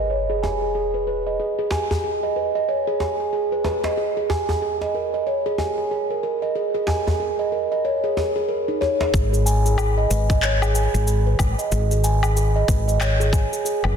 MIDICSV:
0, 0, Header, 1, 6, 480
1, 0, Start_track
1, 0, Key_signature, 5, "minor"
1, 0, Tempo, 645161
1, 1038, Time_signature, 4, 2, 24, 8
1, 10390, End_track
2, 0, Start_track
2, 0, Title_t, "Steel tongue drum"
2, 0, Program_c, 0, 114
2, 74, Note_on_c, 0, 73, 70
2, 205, Note_off_c, 0, 73, 0
2, 220, Note_on_c, 0, 68, 88
2, 312, Note_off_c, 0, 68, 0
2, 317, Note_on_c, 0, 80, 63
2, 447, Note_off_c, 0, 80, 0
2, 460, Note_on_c, 0, 68, 60
2, 549, Note_off_c, 0, 68, 0
2, 557, Note_on_c, 0, 68, 70
2, 687, Note_off_c, 0, 68, 0
2, 700, Note_on_c, 0, 71, 62
2, 787, Note_off_c, 0, 71, 0
2, 797, Note_on_c, 0, 71, 68
2, 934, Note_off_c, 0, 71, 0
2, 942, Note_on_c, 0, 75, 62
2, 1033, Note_off_c, 0, 75, 0
2, 1039, Note_on_c, 0, 68, 70
2, 1168, Note_off_c, 0, 68, 0
2, 1180, Note_on_c, 0, 68, 86
2, 1272, Note_off_c, 0, 68, 0
2, 1277, Note_on_c, 0, 80, 65
2, 1407, Note_off_c, 0, 80, 0
2, 1419, Note_on_c, 0, 68, 65
2, 1506, Note_off_c, 0, 68, 0
2, 1515, Note_on_c, 0, 68, 69
2, 1646, Note_off_c, 0, 68, 0
2, 1661, Note_on_c, 0, 75, 68
2, 1748, Note_off_c, 0, 75, 0
2, 1757, Note_on_c, 0, 71, 62
2, 1894, Note_off_c, 0, 71, 0
2, 1900, Note_on_c, 0, 75, 71
2, 1992, Note_off_c, 0, 75, 0
2, 1998, Note_on_c, 0, 73, 70
2, 2127, Note_off_c, 0, 73, 0
2, 2138, Note_on_c, 0, 68, 89
2, 2231, Note_off_c, 0, 68, 0
2, 2236, Note_on_c, 0, 80, 60
2, 2366, Note_off_c, 0, 80, 0
2, 2380, Note_on_c, 0, 68, 61
2, 2467, Note_off_c, 0, 68, 0
2, 2476, Note_on_c, 0, 68, 71
2, 2606, Note_off_c, 0, 68, 0
2, 2620, Note_on_c, 0, 71, 65
2, 2707, Note_off_c, 0, 71, 0
2, 2720, Note_on_c, 0, 71, 70
2, 2855, Note_off_c, 0, 71, 0
2, 2864, Note_on_c, 0, 75, 66
2, 2954, Note_off_c, 0, 75, 0
2, 2957, Note_on_c, 0, 68, 74
2, 3087, Note_off_c, 0, 68, 0
2, 3102, Note_on_c, 0, 68, 84
2, 3193, Note_off_c, 0, 68, 0
2, 3198, Note_on_c, 0, 80, 68
2, 3328, Note_off_c, 0, 80, 0
2, 3344, Note_on_c, 0, 68, 72
2, 3429, Note_off_c, 0, 68, 0
2, 3438, Note_on_c, 0, 68, 74
2, 3567, Note_off_c, 0, 68, 0
2, 3584, Note_on_c, 0, 75, 67
2, 3669, Note_off_c, 0, 75, 0
2, 3680, Note_on_c, 0, 70, 61
2, 3815, Note_off_c, 0, 70, 0
2, 3824, Note_on_c, 0, 75, 68
2, 3914, Note_off_c, 0, 75, 0
2, 3918, Note_on_c, 0, 73, 70
2, 4048, Note_off_c, 0, 73, 0
2, 4062, Note_on_c, 0, 68, 91
2, 4153, Note_off_c, 0, 68, 0
2, 4155, Note_on_c, 0, 80, 65
2, 4286, Note_off_c, 0, 80, 0
2, 4299, Note_on_c, 0, 68, 64
2, 4389, Note_off_c, 0, 68, 0
2, 4398, Note_on_c, 0, 68, 70
2, 4527, Note_off_c, 0, 68, 0
2, 4542, Note_on_c, 0, 70, 63
2, 4628, Note_off_c, 0, 70, 0
2, 4637, Note_on_c, 0, 70, 73
2, 4774, Note_off_c, 0, 70, 0
2, 4778, Note_on_c, 0, 75, 68
2, 4871, Note_off_c, 0, 75, 0
2, 4876, Note_on_c, 0, 68, 74
2, 5006, Note_off_c, 0, 68, 0
2, 5018, Note_on_c, 0, 68, 86
2, 5111, Note_off_c, 0, 68, 0
2, 5116, Note_on_c, 0, 80, 73
2, 5246, Note_off_c, 0, 80, 0
2, 5258, Note_on_c, 0, 68, 66
2, 5347, Note_off_c, 0, 68, 0
2, 5356, Note_on_c, 0, 68, 71
2, 5486, Note_off_c, 0, 68, 0
2, 5499, Note_on_c, 0, 75, 70
2, 5587, Note_off_c, 0, 75, 0
2, 5595, Note_on_c, 0, 70, 64
2, 5733, Note_off_c, 0, 70, 0
2, 5741, Note_on_c, 0, 75, 71
2, 5833, Note_off_c, 0, 75, 0
2, 5838, Note_on_c, 0, 73, 74
2, 5967, Note_off_c, 0, 73, 0
2, 5980, Note_on_c, 0, 68, 87
2, 6068, Note_off_c, 0, 68, 0
2, 6077, Note_on_c, 0, 68, 70
2, 6210, Note_off_c, 0, 68, 0
2, 6218, Note_on_c, 0, 68, 88
2, 6311, Note_off_c, 0, 68, 0
2, 6313, Note_on_c, 0, 70, 73
2, 6452, Note_off_c, 0, 70, 0
2, 6459, Note_on_c, 0, 63, 83
2, 6552, Note_off_c, 0, 63, 0
2, 6554, Note_on_c, 0, 73, 96
2, 6638, Note_off_c, 0, 73, 0
2, 6698, Note_on_c, 0, 68, 67
2, 6755, Note_off_c, 0, 68, 0
2, 6795, Note_on_c, 0, 68, 81
2, 6926, Note_off_c, 0, 68, 0
2, 6939, Note_on_c, 0, 68, 94
2, 7032, Note_off_c, 0, 68, 0
2, 7037, Note_on_c, 0, 80, 75
2, 7167, Note_off_c, 0, 80, 0
2, 7183, Note_on_c, 0, 68, 75
2, 7268, Note_off_c, 0, 68, 0
2, 7421, Note_on_c, 0, 75, 77
2, 7508, Note_off_c, 0, 75, 0
2, 7514, Note_on_c, 0, 71, 70
2, 7653, Note_off_c, 0, 71, 0
2, 7661, Note_on_c, 0, 75, 79
2, 7753, Note_off_c, 0, 75, 0
2, 7760, Note_on_c, 0, 73, 84
2, 7888, Note_off_c, 0, 73, 0
2, 7902, Note_on_c, 0, 68, 99
2, 7993, Note_off_c, 0, 68, 0
2, 7999, Note_on_c, 0, 80, 75
2, 8128, Note_off_c, 0, 80, 0
2, 8142, Note_on_c, 0, 68, 69
2, 8230, Note_off_c, 0, 68, 0
2, 8239, Note_on_c, 0, 68, 81
2, 8368, Note_off_c, 0, 68, 0
2, 8382, Note_on_c, 0, 71, 74
2, 8468, Note_off_c, 0, 71, 0
2, 8620, Note_on_c, 0, 75, 76
2, 8712, Note_off_c, 0, 75, 0
2, 8716, Note_on_c, 0, 68, 83
2, 8847, Note_off_c, 0, 68, 0
2, 8863, Note_on_c, 0, 68, 92
2, 8954, Note_off_c, 0, 68, 0
2, 8958, Note_on_c, 0, 80, 79
2, 9087, Note_off_c, 0, 80, 0
2, 9104, Note_on_c, 0, 68, 75
2, 9189, Note_off_c, 0, 68, 0
2, 9198, Note_on_c, 0, 68, 80
2, 9327, Note_off_c, 0, 68, 0
2, 9342, Note_on_c, 0, 75, 78
2, 9428, Note_off_c, 0, 75, 0
2, 9436, Note_on_c, 0, 71, 67
2, 9574, Note_off_c, 0, 71, 0
2, 9581, Note_on_c, 0, 75, 79
2, 9673, Note_off_c, 0, 75, 0
2, 9677, Note_on_c, 0, 73, 78
2, 9807, Note_off_c, 0, 73, 0
2, 9822, Note_on_c, 0, 68, 103
2, 9913, Note_off_c, 0, 68, 0
2, 9917, Note_on_c, 0, 80, 73
2, 10047, Note_off_c, 0, 80, 0
2, 10062, Note_on_c, 0, 68, 73
2, 10147, Note_off_c, 0, 68, 0
2, 10156, Note_on_c, 0, 68, 86
2, 10286, Note_off_c, 0, 68, 0
2, 10390, End_track
3, 0, Start_track
3, 0, Title_t, "Fretless electric bass"
3, 0, Program_c, 1, 35
3, 6798, Note_on_c, 1, 32, 90
3, 7477, Note_off_c, 1, 32, 0
3, 7518, Note_on_c, 1, 32, 84
3, 8081, Note_off_c, 1, 32, 0
3, 8141, Note_on_c, 1, 32, 84
3, 8436, Note_off_c, 1, 32, 0
3, 8476, Note_on_c, 1, 32, 94
3, 8582, Note_off_c, 1, 32, 0
3, 8719, Note_on_c, 1, 32, 97
3, 9397, Note_off_c, 1, 32, 0
3, 9436, Note_on_c, 1, 32, 93
3, 9999, Note_off_c, 1, 32, 0
3, 10300, Note_on_c, 1, 30, 102
3, 10390, Note_off_c, 1, 30, 0
3, 10390, End_track
4, 0, Start_track
4, 0, Title_t, "Sub drop"
4, 0, Program_c, 2, 103
4, 0, Note_on_c, 2, 60, 63
4, 1037, Note_off_c, 2, 60, 0
4, 10390, End_track
5, 0, Start_track
5, 0, Title_t, "Djembe"
5, 324, Note_on_c, 9, 63, 65
5, 398, Note_off_c, 9, 63, 0
5, 1269, Note_on_c, 9, 62, 62
5, 1273, Note_on_c, 9, 64, 70
5, 1344, Note_off_c, 9, 62, 0
5, 1347, Note_off_c, 9, 64, 0
5, 1420, Note_on_c, 9, 64, 83
5, 1426, Note_on_c, 9, 63, 34
5, 1495, Note_off_c, 9, 64, 0
5, 1501, Note_off_c, 9, 63, 0
5, 2233, Note_on_c, 9, 63, 69
5, 2308, Note_off_c, 9, 63, 0
5, 2712, Note_on_c, 9, 63, 71
5, 2786, Note_off_c, 9, 63, 0
5, 2854, Note_on_c, 9, 63, 50
5, 2858, Note_on_c, 9, 62, 50
5, 2929, Note_off_c, 9, 63, 0
5, 2932, Note_off_c, 9, 62, 0
5, 3197, Note_on_c, 9, 62, 58
5, 3198, Note_on_c, 9, 64, 81
5, 3271, Note_off_c, 9, 62, 0
5, 3273, Note_off_c, 9, 64, 0
5, 3339, Note_on_c, 9, 64, 83
5, 3413, Note_off_c, 9, 64, 0
5, 3580, Note_on_c, 9, 63, 33
5, 3583, Note_on_c, 9, 62, 33
5, 3654, Note_off_c, 9, 63, 0
5, 3658, Note_off_c, 9, 62, 0
5, 4154, Note_on_c, 9, 63, 72
5, 4228, Note_off_c, 9, 63, 0
5, 5110, Note_on_c, 9, 62, 61
5, 5118, Note_on_c, 9, 64, 84
5, 5185, Note_off_c, 9, 62, 0
5, 5192, Note_off_c, 9, 64, 0
5, 5264, Note_on_c, 9, 63, 31
5, 5264, Note_on_c, 9, 64, 89
5, 5338, Note_off_c, 9, 64, 0
5, 5339, Note_off_c, 9, 63, 0
5, 6079, Note_on_c, 9, 63, 77
5, 6153, Note_off_c, 9, 63, 0
5, 6560, Note_on_c, 9, 63, 58
5, 6635, Note_off_c, 9, 63, 0
5, 6700, Note_on_c, 9, 63, 58
5, 6701, Note_on_c, 9, 62, 52
5, 6774, Note_off_c, 9, 63, 0
5, 6776, Note_off_c, 9, 62, 0
5, 10390, End_track
6, 0, Start_track
6, 0, Title_t, "Drums"
6, 6798, Note_on_c, 9, 36, 121
6, 6804, Note_on_c, 9, 69, 46
6, 6872, Note_off_c, 9, 36, 0
6, 6878, Note_off_c, 9, 69, 0
6, 6948, Note_on_c, 9, 69, 30
6, 7022, Note_off_c, 9, 69, 0
6, 7044, Note_on_c, 9, 69, 81
6, 7118, Note_off_c, 9, 69, 0
6, 7186, Note_on_c, 9, 69, 32
6, 7261, Note_off_c, 9, 69, 0
6, 7275, Note_on_c, 9, 77, 81
6, 7281, Note_on_c, 9, 69, 46
6, 7349, Note_off_c, 9, 77, 0
6, 7355, Note_off_c, 9, 69, 0
6, 7521, Note_on_c, 9, 69, 80
6, 7596, Note_off_c, 9, 69, 0
6, 7661, Note_on_c, 9, 36, 97
6, 7666, Note_on_c, 9, 69, 32
6, 7736, Note_off_c, 9, 36, 0
6, 7740, Note_off_c, 9, 69, 0
6, 7756, Note_on_c, 9, 39, 82
6, 7761, Note_on_c, 9, 69, 42
6, 7830, Note_off_c, 9, 39, 0
6, 7836, Note_off_c, 9, 69, 0
6, 7902, Note_on_c, 9, 77, 83
6, 7908, Note_on_c, 9, 69, 32
6, 7977, Note_off_c, 9, 77, 0
6, 7982, Note_off_c, 9, 69, 0
6, 8000, Note_on_c, 9, 69, 73
6, 8074, Note_off_c, 9, 69, 0
6, 8144, Note_on_c, 9, 69, 36
6, 8219, Note_off_c, 9, 69, 0
6, 8240, Note_on_c, 9, 69, 47
6, 8314, Note_off_c, 9, 69, 0
6, 8473, Note_on_c, 9, 77, 83
6, 8477, Note_on_c, 9, 36, 102
6, 8479, Note_on_c, 9, 69, 78
6, 8548, Note_off_c, 9, 77, 0
6, 8551, Note_off_c, 9, 36, 0
6, 8554, Note_off_c, 9, 69, 0
6, 8623, Note_on_c, 9, 69, 33
6, 8698, Note_off_c, 9, 69, 0
6, 8718, Note_on_c, 9, 69, 44
6, 8793, Note_off_c, 9, 69, 0
6, 8863, Note_on_c, 9, 69, 34
6, 8938, Note_off_c, 9, 69, 0
6, 8959, Note_on_c, 9, 69, 81
6, 9033, Note_off_c, 9, 69, 0
6, 9098, Note_on_c, 9, 77, 83
6, 9104, Note_on_c, 9, 69, 36
6, 9172, Note_off_c, 9, 77, 0
6, 9178, Note_off_c, 9, 69, 0
6, 9202, Note_on_c, 9, 69, 50
6, 9276, Note_off_c, 9, 69, 0
6, 9436, Note_on_c, 9, 36, 106
6, 9441, Note_on_c, 9, 69, 77
6, 9510, Note_off_c, 9, 36, 0
6, 9515, Note_off_c, 9, 69, 0
6, 9588, Note_on_c, 9, 69, 35
6, 9662, Note_off_c, 9, 69, 0
6, 9678, Note_on_c, 9, 39, 78
6, 9678, Note_on_c, 9, 77, 73
6, 9684, Note_on_c, 9, 69, 47
6, 9752, Note_off_c, 9, 39, 0
6, 9752, Note_off_c, 9, 77, 0
6, 9758, Note_off_c, 9, 69, 0
6, 9828, Note_on_c, 9, 69, 32
6, 9903, Note_off_c, 9, 69, 0
6, 9915, Note_on_c, 9, 36, 104
6, 9922, Note_on_c, 9, 69, 76
6, 9990, Note_off_c, 9, 36, 0
6, 9997, Note_off_c, 9, 69, 0
6, 10067, Note_on_c, 9, 69, 37
6, 10142, Note_off_c, 9, 69, 0
6, 10161, Note_on_c, 9, 69, 46
6, 10236, Note_off_c, 9, 69, 0
6, 10296, Note_on_c, 9, 77, 84
6, 10370, Note_off_c, 9, 77, 0
6, 10390, End_track
0, 0, End_of_file